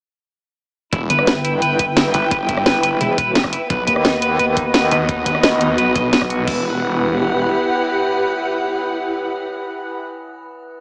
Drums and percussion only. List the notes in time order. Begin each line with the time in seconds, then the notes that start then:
0.93 kick, closed hi-hat
1.10 closed hi-hat
1.19 cross-stick
1.27 snare, closed hi-hat
1.45 closed hi-hat
1.62 closed hi-hat
1.79 kick, closed hi-hat
1.97 snare, closed hi-hat
2.14 closed hi-hat
2.31 kick, closed hi-hat
2.49 kick, closed hi-hat
2.57 cross-stick
2.66 snare, closed hi-hat
2.83 closed hi-hat
3.01 closed hi-hat
3.18 kick, closed hi-hat
3.35 snare, closed hi-hat
3.44 kick, cross-stick
3.53 closed hi-hat
3.70 kick, closed hi-hat
3.87 closed hi-hat
3.96 cross-stick
4.05 snare, closed hi-hat
4.22 closed hi-hat
4.39 closed hi-hat
4.57 kick, closed hi-hat
4.74 snare, closed hi-hat
4.91 closed hi-hat
5.09 kick, closed hi-hat
5.26 kick, closed hi-hat
5.35 cross-stick
5.43 snare, closed hi-hat
5.61 closed hi-hat
5.78 closed hi-hat
5.96 kick, closed hi-hat
6.13 snare, closed hi-hat
6.22 kick, cross-stick
6.30 closed hi-hat
6.48 kick, crash